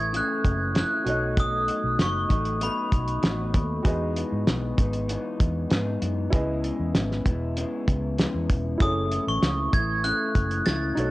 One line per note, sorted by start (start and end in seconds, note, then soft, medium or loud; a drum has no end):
0.00 0.20 A1 medium
0.00 0.12 E3 soft
0.00 0.13 A3 soft
0.00 0.13 E4 soft
0.00 1.01 G#4 medium
0.00 1.02 A4 medium
0.00 1.03 C#5 soft
0.00 1.04 E5 medium
0.00 0.16 G#6 medium
0.13 0.73 C#3 medium
0.13 0.74 E3 medium
0.13 0.75 A3 medium
0.13 0.75 E4 medium
0.13 0.77 F#6 medium
0.13 closed hi-hat medium
0.45 0.82 F#1 medium
0.45 kick medium
0.45 closed hi-hat medium
0.74 1.06 C#3 medium
0.74 1.06 E3 medium
0.74 1.05 A3 medium
0.74 1.04 E4 medium
0.74 snare medium
0.74 closed hi-hat medium
0.79 1.41 F#6 medium
1.04 1.68 B1 medium
1.04 2.30 F#3 soft
1.04 2.29 A3 medium
1.04 2.28 D#4 medium
1.04 3.49 F#4 medium
1.04 3.50 A4 medium
1.04 3.51 C#5 medium
1.04 closed hi-hat medium
1.09 2.31 B2 soft
1.09 3.52 D#5 medium
1.37 2.02 D#6 medium
1.37 kick loud
1.37 closed hi-hat medium
1.68 closed hi-hat medium
1.84 1.96 B1 medium
1.99 2.24 F#1 medium
1.99 2.58 C#6 medium
1.99 snare medium
1.99 closed hi-hat medium
2.29 2.67 A1 medium
2.29 2.60 F#3 soft
2.29 2.61 A3 soft
2.29 2.60 D#4 soft
2.29 kick medium
2.29 closed hi-hat medium
2.45 closed hi-hat medium
2.60 3.21 B2 medium
2.60 3.22 F#3 medium
2.60 3.22 A3 medium
2.60 3.24 D#4 medium
2.60 3.20 B5 medium
2.60 closed hi-hat medium
2.92 3.17 B1 medium
2.92 kick medium
2.92 closed hi-hat medium
3.08 closed hi-hat soft
3.22 3.54 A1 medium
3.22 3.84 B2 medium
3.22 3.85 F#3 medium
3.22 3.85 A3 medium
3.22 3.86 D#4 medium
3.22 snare medium
3.22 closed hi-hat medium
3.54 3.79 D#2 medium
3.54 kick medium
3.54 closed hi-hat medium
3.83 4.22 E2 medium
3.83 4.80 E3 medium
3.83 4.79 G#3 medium
3.83 4.78 B3 medium
3.83 4.76 D#4 medium
3.83 6.28 F#4 medium
3.83 6.29 G#4 medium
3.83 6.29 B4 medium
3.83 kick loud
3.83 closed hi-hat medium
3.88 6.30 D#5 medium
4.16 closed hi-hat medium
4.32 4.44 G#2 medium
4.47 4.72 B1 medium
4.47 snare medium
4.47 closed hi-hat medium
4.77 5.15 G#1 medium
4.77 5.08 G#3 soft
4.77 5.08 B3 medium
4.77 5.09 D#4 soft
4.77 kick medium
4.77 closed hi-hat medium
4.93 closed hi-hat medium
5.08 5.69 E3 medium
5.08 5.70 G#3 medium
5.08 5.71 B3 medium
5.08 5.71 D#4 medium
5.08 closed hi-hat medium
5.40 5.65 E2 medium
5.40 kick medium
5.40 closed hi-hat medium
5.70 5.96 G#2 medium
5.70 6.32 E3 medium
5.70 6.32 G#3 medium
5.70 6.33 B3 medium
5.70 6.33 D#4 medium
5.70 snare medium
5.70 closed hi-hat medium
6.02 6.27 F#2 medium
6.02 closed hi-hat medium
6.30 6.70 C#2 medium
6.30 7.25 C#3 medium
6.30 7.26 G#3 medium
6.30 7.26 B3 medium
6.30 8.75 E4 medium
6.30 7.25 E4 medium
6.30 8.76 G#4 medium
6.30 8.77 B4 medium
6.30 kick loud
6.30 closed hi-hat medium
6.35 8.78 D#5 medium
6.64 closed hi-hat medium
6.80 6.92 E2 medium
6.95 7.20 G#1 medium
6.95 snare medium
6.95 closed hi-hat medium
7.11 snare soft
7.25 7.63 E1 medium
7.25 7.56 G#3 soft
7.25 7.57 B3 soft
7.25 7.56 E4 soft
7.25 kick medium
7.25 closed hi-hat medium
7.56 8.17 C#3 medium
7.56 8.18 G#3 medium
7.56 8.18 B3 medium
7.56 8.20 E4 medium
7.56 closed hi-hat medium
7.88 8.25 C#2 medium
7.88 kick medium
7.88 closed hi-hat medium
8.18 8.80 C#3 medium
8.18 8.81 G#3 medium
8.18 8.81 B3 medium
8.18 8.82 E4 medium
8.18 snare medium
8.18 closed hi-hat medium
8.34 8.47 E2 medium
8.50 8.75 E1 medium
8.50 kick medium
8.50 closed hi-hat medium
8.78 9.18 F#1 loud
8.78 9.73 F#2 medium
8.78 9.74 C#3 medium
8.78 9.74 E3 medium
8.78 9.74 A3 medium
8.78 10.92 E4 medium
8.78 10.93 G#4 medium
8.78 10.94 A4 medium
8.78 kick loud
8.78 closed hi-hat medium
8.82 9.72 E4 medium
8.82 10.94 C#5 medium
8.82 9.29 D#6 medium
9.12 closed hi-hat medium
9.27 9.40 A1 medium
9.27 9.76 C#6 medium
9.42 9.67 C#2 medium
9.42 snare medium
9.42 closed hi-hat medium
9.73 10.11 A1 medium
9.73 10.03 E3 soft
9.73 10.04 A3 soft
9.73 10.04 E4 soft
9.73 10.05 G#6 medium
9.73 kick medium
9.73 closed hi-hat medium
10.04 10.64 C#3 medium
10.04 10.65 E3 medium
10.04 10.67 A3 medium
10.04 10.67 E4 medium
10.04 10.62 F#6 medium
10.04 closed hi-hat medium
10.35 10.60 F#1 medium
10.35 kick medium
10.35 closed hi-hat medium
10.51 closed hi-hat soft
10.65 10.91 C#2 medium
10.65 10.97 C#3 soft
10.65 10.97 E3 medium
10.65 10.96 A3 medium
10.65 10.96 E4 medium
10.65 11.11 A6 loud
10.65 snare medium
10.65 closed hi-hat medium
10.95 11.11 B1 medium
10.95 11.11 F#3 soft
10.95 11.11 A3 medium
10.95 11.11 D#4 medium
10.95 11.11 F#4 medium
10.95 11.11 A4 medium
10.95 closed hi-hat medium
10.99 11.11 B2 soft
10.99 11.11 C#5 medium